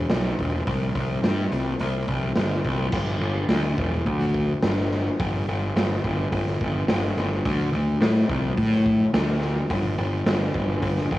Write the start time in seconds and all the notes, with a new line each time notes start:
0.10 B1, snare, open hi-hat
0.39 E1, kick, open hi-hat
0.67 C2, kick, open hi-hat
0.95 C2, kick, open hi-hat
1.23 G2, snare, open hi-hat
1.52 C2, open hi-hat
1.79 C2, open hi-hat
2.08 C2, kick, open hi-hat
2.36 G1, snare, open hi-hat
2.64 C2, kick, open hi-hat
2.92 G1, kick, crash
3.20 G1
3.48 D2, snare, open hi-hat
3.78 E1, kick
4.06 D2, kick, open hi-hat
4.35 kick
4.63 G1, snare, open hi-hat
4.92 snare
5.20 G1, kick, open hi-hat
5.48 G1
5.76 G1, snare, open hi-hat
6.04 G1, kick
6.32 G1, kick, open hi-hat
6.47 snare
6.61 G1, kick
6.88 G1, snare, open hi-hat
7.17 G1, snare
7.45 D2, kick, open hi-hat
7.73 D2
8.01 A2, snare, open hi-hat
8.29 C2, kick
8.57 A2, kick, open hi-hat
8.72 snare
8.86 kick
9.13 D2, snare, open hi-hat
9.42 snare
9.70 G1, kick, open hi-hat
9.98 G1
10.26 G1, snare, open hi-hat
10.55 G1, kick
10.82 G1, kick, open hi-hat
10.97 snare
11.11 G1, kick